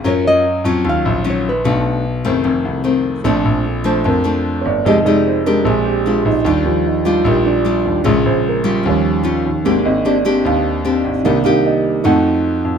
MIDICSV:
0, 0, Header, 1, 5, 480
1, 0, Start_track
1, 0, Tempo, 400267
1, 48, Time_signature, 4, 2, 24, 8
1, 15327, End_track
2, 0, Start_track
2, 0, Title_t, "Nylon-string guitar"
2, 0, Program_c, 0, 24
2, 93, Note_on_c, 0, 73, 93
2, 153, Note_off_c, 0, 73, 0
2, 330, Note_on_c, 0, 75, 102
2, 757, Note_off_c, 0, 75, 0
2, 1071, Note_on_c, 0, 77, 92
2, 1535, Note_off_c, 0, 77, 0
2, 1558, Note_on_c, 0, 73, 82
2, 1771, Note_off_c, 0, 73, 0
2, 1786, Note_on_c, 0, 71, 76
2, 2671, Note_off_c, 0, 71, 0
2, 15327, End_track
3, 0, Start_track
3, 0, Title_t, "Grand piano"
3, 0, Program_c, 1, 0
3, 294, Note_on_c, 1, 73, 51
3, 300, Control_c, 1, 64, 127
3, 481, Note_on_c, 1, 77, 40
3, 1026, Control_c, 1, 64, 0
3, 1205, Note_off_c, 1, 73, 0
3, 1358, Note_off_c, 1, 77, 0
3, 3885, Note_on_c, 1, 69, 45
3, 3898, Note_on_c, 1, 60, 36
3, 3899, Note_on_c, 1, 62, 46
3, 4084, Control_c, 1, 64, 127
3, 4623, Note_on_c, 1, 72, 70
3, 4851, Note_off_c, 1, 72, 0
3, 4892, Note_on_c, 1, 70, 60
3, 5534, Note_on_c, 1, 73, 49
3, 5546, Note_off_c, 1, 70, 0
3, 5565, Note_off_c, 1, 73, 0
3, 5588, Note_on_c, 1, 74, 69
3, 5763, Note_off_c, 1, 69, 0
3, 5770, Note_off_c, 1, 60, 0
3, 5770, Note_off_c, 1, 62, 0
3, 5815, Note_off_c, 1, 74, 0
3, 5821, Note_on_c, 1, 56, 36
3, 5831, Note_on_c, 1, 63, 49
3, 5832, Control_c, 1, 64, 0
3, 5852, Note_on_c, 1, 75, 75
3, 6016, Control_c, 1, 64, 127
3, 6061, Note_on_c, 1, 74, 56
3, 6067, Note_off_c, 1, 75, 0
3, 6291, Note_off_c, 1, 74, 0
3, 6322, Note_on_c, 1, 72, 56
3, 6542, Note_off_c, 1, 72, 0
3, 6553, Note_on_c, 1, 70, 66
3, 6731, Note_off_c, 1, 56, 0
3, 6736, Note_off_c, 1, 63, 0
3, 6757, Note_on_c, 1, 56, 40
3, 6763, Note_on_c, 1, 60, 43
3, 6774, Note_on_c, 1, 62, 50
3, 6778, Note_off_c, 1, 70, 0
3, 6791, Control_c, 1, 64, 0
3, 6801, Note_on_c, 1, 68, 52
3, 7014, Control_c, 1, 64, 127
3, 7015, Note_on_c, 1, 67, 68
3, 7022, Note_off_c, 1, 68, 0
3, 7248, Note_off_c, 1, 67, 0
3, 7280, Note_on_c, 1, 65, 54
3, 7450, Note_off_c, 1, 56, 0
3, 7453, Note_off_c, 1, 60, 0
3, 7459, Note_off_c, 1, 62, 0
3, 7501, Note_off_c, 1, 65, 0
3, 7509, Note_on_c, 1, 63, 64
3, 7735, Note_off_c, 1, 63, 0
3, 7753, Control_c, 1, 64, 0
3, 7773, Note_on_c, 1, 62, 54
3, 7935, Control_c, 1, 64, 127
3, 7973, Note_off_c, 1, 62, 0
3, 7975, Note_on_c, 1, 53, 40
3, 7981, Note_on_c, 1, 55, 37
3, 7991, Note_on_c, 1, 62, 43
3, 7993, Note_on_c, 1, 65, 61
3, 8218, Note_off_c, 1, 65, 0
3, 8244, Note_on_c, 1, 63, 53
3, 8463, Note_off_c, 1, 63, 0
3, 8464, Note_on_c, 1, 65, 63
3, 8659, Note_off_c, 1, 53, 0
3, 8663, Note_off_c, 1, 55, 0
3, 8668, Note_off_c, 1, 62, 0
3, 8693, Note_off_c, 1, 65, 0
3, 8729, Note_on_c, 1, 67, 64
3, 8946, Note_off_c, 1, 67, 0
3, 8948, Note_on_c, 1, 62, 67
3, 9088, Note_off_c, 1, 62, 0
3, 9643, Note_on_c, 1, 49, 43
3, 9655, Note_on_c, 1, 56, 39
3, 9671, Control_c, 1, 64, 0
3, 9883, Control_c, 1, 64, 127
3, 9905, Note_on_c, 1, 72, 63
3, 9968, Note_off_c, 1, 49, 0
3, 9974, Note_off_c, 1, 56, 0
3, 10133, Note_off_c, 1, 72, 0
3, 10177, Note_on_c, 1, 70, 57
3, 10604, Note_off_c, 1, 70, 0
3, 10618, Note_on_c, 1, 53, 44
3, 10627, Note_on_c, 1, 55, 38
3, 10631, Control_c, 1, 64, 0
3, 10633, Note_on_c, 1, 61, 45
3, 10657, Note_on_c, 1, 73, 63
3, 10870, Note_off_c, 1, 73, 0
3, 10875, Control_c, 1, 64, 127
3, 10936, Note_off_c, 1, 53, 0
3, 10941, Note_off_c, 1, 55, 0
3, 10944, Note_off_c, 1, 61, 0
3, 11562, Note_on_c, 1, 58, 38
3, 11573, Note_on_c, 1, 60, 36
3, 11580, Note_on_c, 1, 62, 49
3, 11591, Control_c, 1, 64, 0
3, 11818, Note_on_c, 1, 75, 64
3, 11822, Control_c, 1, 64, 127
3, 12049, Note_off_c, 1, 75, 0
3, 12075, Note_on_c, 1, 74, 61
3, 12252, Note_off_c, 1, 58, 0
3, 12258, Note_off_c, 1, 60, 0
3, 12261, Note_off_c, 1, 62, 0
3, 12511, Note_off_c, 1, 74, 0
3, 12557, Note_on_c, 1, 77, 63
3, 12778, Note_off_c, 1, 77, 0
3, 13473, Note_on_c, 1, 51, 40
3, 13487, Note_on_c, 1, 58, 43
3, 13489, Note_on_c, 1, 62, 49
3, 13510, Control_c, 1, 64, 0
3, 13727, Control_c, 1, 64, 127
3, 13730, Note_on_c, 1, 77, 60
3, 13801, Note_off_c, 1, 51, 0
3, 13809, Note_off_c, 1, 58, 0
3, 13810, Note_off_c, 1, 62, 0
3, 13963, Note_off_c, 1, 77, 0
3, 13986, Note_on_c, 1, 75, 66
3, 14425, Note_off_c, 1, 75, 0
3, 14425, Note_on_c, 1, 57, 40
3, 14438, Note_on_c, 1, 63, 49
3, 14462, Note_on_c, 1, 78, 65
3, 14464, Control_c, 1, 64, 0
3, 14686, Control_c, 1, 64, 127
3, 14689, Note_off_c, 1, 78, 0
3, 15327, Note_off_c, 1, 57, 0
3, 15327, Note_off_c, 1, 63, 0
3, 15327, End_track
4, 0, Start_track
4, 0, Title_t, "Nylon-string guitar"
4, 0, Program_c, 2, 24
4, 51, Note_on_c, 2, 54, 59
4, 58, Note_on_c, 2, 61, 59
4, 60, Note_on_c, 2, 65, 55
4, 69, Note_on_c, 2, 70, 65
4, 531, Note_off_c, 2, 65, 0
4, 532, Note_off_c, 2, 61, 0
4, 536, Note_off_c, 2, 70, 0
4, 767, Note_off_c, 2, 54, 0
4, 781, Note_on_c, 2, 54, 65
4, 783, Note_on_c, 2, 61, 60
4, 791, Note_on_c, 2, 65, 76
4, 1013, Note_on_c, 2, 51, 57
4, 1458, Note_off_c, 2, 54, 0
4, 1458, Note_off_c, 2, 61, 0
4, 1463, Note_off_c, 2, 65, 0
4, 1492, Note_on_c, 2, 54, 57
4, 1496, Note_on_c, 2, 61, 60
4, 1502, Note_on_c, 2, 65, 58
4, 1800, Note_off_c, 2, 54, 0
4, 1803, Note_off_c, 2, 61, 0
4, 1805, Note_off_c, 2, 65, 0
4, 1949, Note_off_c, 2, 51, 0
4, 1971, Note_on_c, 2, 47, 57
4, 1980, Note_on_c, 2, 66, 60
4, 1981, Note_on_c, 2, 57, 59
4, 1983, Note_on_c, 2, 62, 58
4, 2451, Note_off_c, 2, 62, 0
4, 2452, Note_off_c, 2, 57, 0
4, 2453, Note_off_c, 2, 66, 0
4, 2692, Note_on_c, 2, 57, 68
4, 2694, Note_on_c, 2, 51, 68
4, 2704, Note_on_c, 2, 60, 65
4, 2910, Note_off_c, 2, 47, 0
4, 2924, Note_on_c, 2, 41, 55
4, 3374, Note_off_c, 2, 57, 0
4, 3375, Note_off_c, 2, 51, 0
4, 3380, Note_off_c, 2, 60, 0
4, 3403, Note_on_c, 2, 51, 57
4, 3409, Note_on_c, 2, 57, 47
4, 3412, Note_on_c, 2, 60, 57
4, 3850, Note_off_c, 2, 51, 0
4, 3853, Note_off_c, 2, 57, 0
4, 3854, Note_off_c, 2, 60, 0
4, 3865, Note_off_c, 2, 41, 0
4, 3890, Note_on_c, 2, 46, 59
4, 3894, Note_on_c, 2, 53, 55
4, 3897, Note_on_c, 2, 57, 53
4, 3907, Note_on_c, 2, 62, 69
4, 4370, Note_off_c, 2, 53, 0
4, 4373, Note_off_c, 2, 57, 0
4, 4378, Note_off_c, 2, 62, 0
4, 4606, Note_on_c, 2, 53, 68
4, 4614, Note_on_c, 2, 57, 62
4, 4621, Note_on_c, 2, 62, 70
4, 4829, Note_off_c, 2, 46, 0
4, 4847, Note_on_c, 2, 41, 59
4, 5052, Note_off_c, 2, 53, 0
4, 5056, Note_off_c, 2, 57, 0
4, 5060, Note_off_c, 2, 62, 0
4, 5084, Note_on_c, 2, 53, 57
4, 5089, Note_on_c, 2, 57, 56
4, 5099, Note_on_c, 2, 62, 67
4, 5788, Note_off_c, 2, 41, 0
4, 5790, Note_off_c, 2, 53, 0
4, 5794, Note_off_c, 2, 57, 0
4, 5796, Note_off_c, 2, 62, 0
4, 5829, Note_on_c, 2, 53, 56
4, 5830, Note_on_c, 2, 56, 63
4, 5831, Note_on_c, 2, 63, 57
4, 5839, Note_on_c, 2, 67, 67
4, 5962, Note_off_c, 2, 56, 0
4, 5965, Note_off_c, 2, 63, 0
4, 5966, Note_off_c, 2, 67, 0
4, 6069, Note_on_c, 2, 56, 63
4, 6075, Note_on_c, 2, 63, 64
4, 6084, Note_on_c, 2, 67, 57
4, 6504, Note_off_c, 2, 56, 0
4, 6507, Note_off_c, 2, 63, 0
4, 6512, Note_off_c, 2, 67, 0
4, 6550, Note_on_c, 2, 56, 60
4, 6556, Note_on_c, 2, 62, 68
4, 6560, Note_on_c, 2, 67, 70
4, 6760, Note_off_c, 2, 53, 0
4, 6793, Note_on_c, 2, 46, 55
4, 7226, Note_off_c, 2, 56, 0
4, 7226, Note_off_c, 2, 67, 0
4, 7227, Note_off_c, 2, 62, 0
4, 7262, Note_on_c, 2, 56, 52
4, 7267, Note_on_c, 2, 62, 57
4, 7280, Note_on_c, 2, 67, 60
4, 7569, Note_off_c, 2, 56, 0
4, 7569, Note_off_c, 2, 62, 0
4, 7577, Note_off_c, 2, 67, 0
4, 7720, Note_off_c, 2, 46, 0
4, 7743, Note_on_c, 2, 51, 58
4, 7748, Note_on_c, 2, 55, 56
4, 7750, Note_on_c, 2, 62, 57
4, 7754, Note_on_c, 2, 65, 61
4, 8219, Note_off_c, 2, 55, 0
4, 8220, Note_off_c, 2, 62, 0
4, 8222, Note_off_c, 2, 65, 0
4, 8456, Note_on_c, 2, 55, 65
4, 8466, Note_on_c, 2, 62, 69
4, 8471, Note_on_c, 2, 65, 69
4, 8676, Note_off_c, 2, 51, 0
4, 8707, Note_on_c, 2, 46, 61
4, 9137, Note_off_c, 2, 55, 0
4, 9142, Note_off_c, 2, 62, 0
4, 9145, Note_off_c, 2, 65, 0
4, 9169, Note_on_c, 2, 55, 51
4, 9183, Note_on_c, 2, 62, 60
4, 9185, Note_on_c, 2, 65, 58
4, 9614, Note_off_c, 2, 55, 0
4, 9620, Note_off_c, 2, 65, 0
4, 9622, Note_off_c, 2, 62, 0
4, 9631, Note_off_c, 2, 46, 0
4, 9642, Note_on_c, 2, 46, 59
4, 9643, Note_on_c, 2, 56, 61
4, 9647, Note_on_c, 2, 61, 56
4, 9647, Note_on_c, 2, 65, 67
4, 10330, Note_off_c, 2, 61, 0
4, 10331, Note_off_c, 2, 56, 0
4, 10333, Note_off_c, 2, 65, 0
4, 10360, Note_on_c, 2, 55, 70
4, 10362, Note_on_c, 2, 61, 58
4, 10373, Note_on_c, 2, 65, 70
4, 10586, Note_off_c, 2, 46, 0
4, 10592, Note_on_c, 2, 51, 58
4, 11048, Note_off_c, 2, 61, 0
4, 11050, Note_off_c, 2, 55, 0
4, 11056, Note_off_c, 2, 65, 0
4, 11074, Note_on_c, 2, 55, 56
4, 11084, Note_on_c, 2, 61, 59
4, 11088, Note_on_c, 2, 65, 66
4, 11394, Note_off_c, 2, 55, 0
4, 11399, Note_off_c, 2, 61, 0
4, 11399, Note_off_c, 2, 65, 0
4, 11539, Note_off_c, 2, 51, 0
4, 11573, Note_on_c, 2, 56, 55
4, 11579, Note_on_c, 2, 60, 60
4, 11581, Note_on_c, 2, 67, 59
4, 11582, Note_on_c, 2, 62, 60
4, 11886, Note_off_c, 2, 60, 0
4, 11886, Note_off_c, 2, 62, 0
4, 11886, Note_off_c, 2, 67, 0
4, 12051, Note_on_c, 2, 60, 54
4, 12058, Note_on_c, 2, 62, 59
4, 12060, Note_on_c, 2, 67, 65
4, 12195, Note_off_c, 2, 60, 0
4, 12196, Note_off_c, 2, 62, 0
4, 12198, Note_off_c, 2, 67, 0
4, 12289, Note_on_c, 2, 60, 61
4, 12294, Note_on_c, 2, 62, 66
4, 12301, Note_on_c, 2, 67, 79
4, 12510, Note_off_c, 2, 56, 0
4, 12547, Note_on_c, 2, 51, 58
4, 12974, Note_off_c, 2, 60, 0
4, 12974, Note_off_c, 2, 62, 0
4, 12975, Note_off_c, 2, 67, 0
4, 13006, Note_on_c, 2, 60, 58
4, 13013, Note_on_c, 2, 62, 52
4, 13016, Note_on_c, 2, 67, 59
4, 13470, Note_off_c, 2, 60, 0
4, 13474, Note_off_c, 2, 62, 0
4, 13474, Note_off_c, 2, 67, 0
4, 13475, Note_off_c, 2, 51, 0
4, 13488, Note_on_c, 2, 48, 55
4, 13489, Note_on_c, 2, 58, 58
4, 13494, Note_on_c, 2, 63, 56
4, 13500, Note_on_c, 2, 67, 62
4, 13631, Note_off_c, 2, 58, 0
4, 13634, Note_off_c, 2, 63, 0
4, 13637, Note_off_c, 2, 67, 0
4, 13717, Note_on_c, 2, 58, 56
4, 13727, Note_on_c, 2, 63, 58
4, 13741, Note_on_c, 2, 67, 76
4, 14405, Note_off_c, 2, 58, 0
4, 14410, Note_off_c, 2, 63, 0
4, 14417, Note_off_c, 2, 67, 0
4, 14425, Note_off_c, 2, 48, 0
4, 14436, Note_on_c, 2, 57, 53
4, 14440, Note_on_c, 2, 53, 57
4, 14446, Note_on_c, 2, 63, 60
4, 14447, Note_on_c, 2, 66, 60
4, 15327, Note_off_c, 2, 53, 0
4, 15327, Note_off_c, 2, 57, 0
4, 15327, Note_off_c, 2, 63, 0
4, 15327, Note_off_c, 2, 66, 0
4, 15327, End_track
5, 0, Start_track
5, 0, Title_t, "Grand piano"
5, 0, Program_c, 3, 0
5, 49, Note_on_c, 3, 42, 92
5, 722, Note_off_c, 3, 42, 0
5, 771, Note_on_c, 3, 41, 83
5, 994, Note_off_c, 3, 41, 0
5, 1013, Note_on_c, 3, 39, 91
5, 1251, Note_off_c, 3, 39, 0
5, 1264, Note_on_c, 3, 34, 96
5, 1930, Note_off_c, 3, 34, 0
5, 1978, Note_on_c, 3, 35, 100
5, 2647, Note_off_c, 3, 35, 0
5, 2702, Note_on_c, 3, 30, 85
5, 2921, Note_off_c, 3, 30, 0
5, 2936, Note_on_c, 3, 29, 89
5, 3174, Note_off_c, 3, 29, 0
5, 3176, Note_on_c, 3, 36, 83
5, 3847, Note_off_c, 3, 36, 0
5, 3889, Note_on_c, 3, 34, 98
5, 4114, Note_off_c, 3, 34, 0
5, 4139, Note_on_c, 3, 34, 93
5, 4857, Note_off_c, 3, 34, 0
5, 4861, Note_on_c, 3, 41, 99
5, 5530, Note_off_c, 3, 41, 0
5, 5577, Note_on_c, 3, 31, 85
5, 5816, Note_off_c, 3, 31, 0
5, 5819, Note_on_c, 3, 29, 91
5, 6039, Note_off_c, 3, 29, 0
5, 6057, Note_on_c, 3, 29, 83
5, 6773, Note_on_c, 3, 34, 97
5, 6776, Note_off_c, 3, 29, 0
5, 7447, Note_off_c, 3, 34, 0
5, 7497, Note_on_c, 3, 34, 81
5, 7730, Note_on_c, 3, 39, 104
5, 7737, Note_off_c, 3, 34, 0
5, 7946, Note_off_c, 3, 39, 0
5, 7964, Note_on_c, 3, 39, 85
5, 8688, Note_on_c, 3, 34, 98
5, 8690, Note_off_c, 3, 39, 0
5, 9364, Note_off_c, 3, 34, 0
5, 9419, Note_on_c, 3, 39, 76
5, 9657, Note_off_c, 3, 39, 0
5, 9659, Note_on_c, 3, 34, 100
5, 9880, Note_off_c, 3, 34, 0
5, 9898, Note_on_c, 3, 34, 89
5, 10617, Note_off_c, 3, 34, 0
5, 10620, Note_on_c, 3, 39, 100
5, 11289, Note_off_c, 3, 39, 0
5, 11337, Note_on_c, 3, 39, 78
5, 11575, Note_on_c, 3, 32, 93
5, 11576, Note_off_c, 3, 39, 0
5, 11794, Note_off_c, 3, 32, 0
5, 11812, Note_on_c, 3, 32, 90
5, 12532, Note_on_c, 3, 39, 96
5, 12533, Note_off_c, 3, 32, 0
5, 13204, Note_off_c, 3, 39, 0
5, 13247, Note_on_c, 3, 32, 79
5, 13490, Note_off_c, 3, 32, 0
5, 13492, Note_on_c, 3, 36, 109
5, 13715, Note_off_c, 3, 36, 0
5, 13743, Note_on_c, 3, 36, 82
5, 14451, Note_on_c, 3, 41, 96
5, 14456, Note_off_c, 3, 36, 0
5, 15122, Note_off_c, 3, 41, 0
5, 15165, Note_on_c, 3, 41, 74
5, 15327, Note_off_c, 3, 41, 0
5, 15327, End_track
0, 0, End_of_file